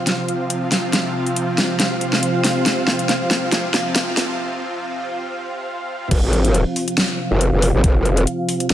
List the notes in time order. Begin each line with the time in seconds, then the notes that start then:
Already playing: C3 F3 C4 F4 F5
0.07 snare, closed hi-hat
0.28 closed hi-hat
0.50 closed hi-hat
0.72 snare, open hi-hat
0.93 snare, closed hi-hat
1.26 closed hi-hat
1.36 closed hi-hat
1.58 snare, closed hi-hat
1.80 snare, closed hi-hat
2.01 closed hi-hat
2.13 snare
2.23 closed hi-hat
2.44 snare, open hi-hat
2.66 snare, closed hi-hat
2.87 snare
2.99 closed hi-hat
3.09 snare, closed hi-hat
3.31 snare, closed hi-hat
3.52 snare, closed hi-hat
3.74 snare, closed hi-hat
3.95 snare, closed hi-hat
4.17 snare, open hi-hat
6.11 F1 C3 F3 C4 F4 F5, kick, closed hi-hat, crash
6.23 G#1
6.33 closed hi-hat
6.45 closed hi-hat
6.54 closed hi-hat
6.76 open hi-hat
6.88 closed hi-hat
6.98 snare, closed hi-hat
7.31 F#1
7.41 closed hi-hat
7.52 F1
7.62 open hi-hat
7.74 G#1
7.84 F#1, kick, closed hi-hat
8.05 closed hi-hat
8.17 closed hi-hat
8.27 closed hi-hat
8.49 open hi-hat
8.60 closed hi-hat
8.70 F1, snare, closed hi-hat